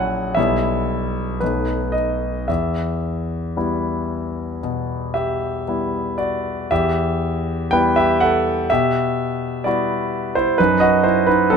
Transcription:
Already playing: A#1 F#3 C#4 E4 F#5 G#5
0.35 B1 G3 B3 E4 E5
1.40 B1 A3 B3 D#4 B4
1.92 D#5
2.48 E2 E5
3.57 G3 B3 E4
4.63 B2
5.14 G4 E5
5.68 G3 B3 E4
6.18 F#4 D5
6.71 E2 G4 E5
7.71 G3 B3 E4 B4 G5
7.96 G4 E5
8.20 A4 F#5
8.70 B2 G4 E5
9.64 G3 B3 E4 F#4 D5
10.35 E4 C5
10.58 F#2 D#4 B4
10.80 F#4 D#5
11.04 E4 C5
11.27 D#4 B4
11.50 F#3 B3 D#4 A4

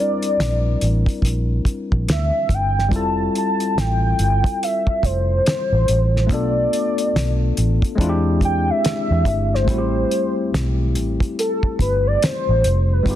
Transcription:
Already playing: G3 C4 D4 E4 A#4
0.00 D5
0.22 closed hi-hat
0.39 A#1, snare, closed hi-hat
0.81 A1, closed hi-hat
1.06 kick, closed hi-hat
1.22 A#1, kick, closed hi-hat
1.65 muted fingered electric bass stroke, kick, closed hi-hat
1.92 A#1, kick
2.08 D2 E5, snare, closed hi-hat
2.49 G1, kick, closed hi-hat
2.54 G5
2.79 snare
2.89 F1 G3 C4 E4, kick
2.93 F4 A4 A5, closed hi-hat
3.35 A5, closed hi-hat
3.60 closed hi-hat
3.77 A1 G5, snare, closed hi-hat
4.19 G1, closed hi-hat
4.44 kick, closed hi-hat
4.63 E5, closed hi-hat
4.87 kick
5.03 F1 C5, kick, closed hi-hat
5.46 snare, closed hi-hat
5.72 A1
5.88 A1, closed hi-hat
6.17 snare
6.27 B1 A3 B3 D4, kick, closed hi-hat
6.32 F4 A4 D5
6.73 closed hi-hat
6.98 closed hi-hat
7.15 B1, snare, closed hi-hat
7.57 A1, closed hi-hat
7.82 kick, closed hi-hat
7.95 E2 G#3 C4 D4, kick
8.01 E4 F4, closed hi-hat
8.09 G4
8.41 G5, kick, closed hi-hat
8.70 E5
8.85 snare, closed hi-hat
9.10 E2
9.25 G1, kick, closed hi-hat
9.54 C5, snare
9.64 A1 G3 A3 C4, kick
9.69 E4 F#4, closed hi-hat
9.78 G4
10.11 closed hi-hat
10.54 B1, snare, closed hi-hat
10.95 A1, closed hi-hat
11.20 kick, closed hi-hat
11.39 A4, closed hi-hat
11.63 kick
11.79 G1 B4, kick, closed hi-hat
12.07 D5
12.22 C5, snare, closed hi-hat
12.49 A1
12.64 F1, closed hi-hat
12.93 B4
13.03 G1 G3 B3, kick, closed hi-hat
13.07 D#4 F4 G4

